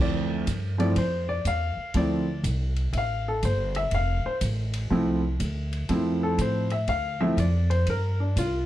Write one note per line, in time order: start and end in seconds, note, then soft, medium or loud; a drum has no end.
0.00 0.43 D2 medium
0.00 0.45 D2 medium
0.00 0.43 F3 medium
0.00 0.43 A3 medium
0.00 0.44 C4 medium
0.00 0.44 E4 medium
0.00 0.45 D5 medium
0.47 0.95 G2 medium
0.47 kick soft
0.47 hi-hat pedal medium
0.47 ride medium
0.78 0.94 F3 medium
0.78 0.94 A3 medium
0.78 0.95 C4 medium
0.78 0.95 E4 medium
0.78 0.96 D5 medium
0.78 ride soft
0.96 1.44 F2 medium
0.96 1.29 C5 medium
0.96 kick soft
0.96 ride medium
1.29 1.45 D5 medium
1.45 1.75 E2 medium
1.45 1.92 F5 medium
1.45 kick soft
1.45 hi-hat pedal medium
1.45 ride medium
1.77 muted upright bass stroke soft
1.94 2.42 D2 medium
1.94 2.24 F3 medium
1.94 2.24 A3 medium
1.94 2.25 C4 medium
1.94 2.25 E4 medium
1.94 2.42 D5 medium
1.94 kick soft
1.94 ride medium
2.43 2.92 C2 medium
2.43 kick soft
2.43 hi-hat pedal medium
2.43 ride medium
2.76 ride soft
2.93 3.41 A1 medium
2.93 2.96 E5 medium
2.93 kick soft
2.93 ride medium
2.98 3.27 F5 medium
3.28 3.43 A4 medium
3.43 3.91 G1 loud
3.43 3.75 C5 medium
3.43 kick soft
3.43 hi-hat pedal medium
3.43 ride medium
3.75 3.92 E5 loud
3.75 ride soft
3.91 4.22 F1 medium
3.91 4.25 F5 medium
3.91 kick soft
3.91 ride medium
4.25 4.36 C5 medium
4.25 muted upright bass stroke soft
4.41 4.89 A1 medium
4.41 kick soft
4.41 hi-hat pedal medium
4.41 ride medium
4.73 ride medium
4.90 5.38 C2 medium
4.90 5.20 F3 medium
4.90 5.20 A3 medium
4.90 5.20 C4 medium
4.90 5.21 E4 medium
4.90 kick soft
5.40 5.88 D2 medium
5.40 kick soft
5.40 hi-hat pedal medium
5.40 ride medium
5.73 ride soft
5.89 6.37 F2 medium
5.89 6.64 F3 medium
5.89 6.65 A3 medium
5.89 6.65 C4 medium
5.89 6.65 E4 medium
5.89 kick soft
5.89 ride medium
6.23 6.39 A4 medium
6.38 6.86 A2 loud
6.38 6.71 C5 medium
6.38 kick soft
6.38 hi-hat pedal medium
6.38 ride medium
6.70 6.88 E5 medium
6.70 ride soft
6.87 7.36 D2 medium
6.87 7.20 F5 loud
6.87 kick soft
6.87 ride medium
7.21 7.36 F3 medium
7.21 7.36 A3 medium
7.21 7.36 C4 medium
7.21 7.37 E4 medium
7.21 7.37 E5 medium
7.37 7.85 F2 loud
7.37 7.70 D5 medium
7.37 kick soft
7.37 hi-hat pedal soft
7.37 ride medium
7.70 7.86 C5 medium
7.70 ride medium
7.87 8.34 G2 medium
7.87 8.20 A#4 medium
7.87 kick soft
7.87 ride medium
8.20 8.36 D4 medium
8.36 8.66 C2 medium
8.36 8.66 F4 medium
8.36 kick soft
8.36 hi-hat pedal medium
8.36 ride medium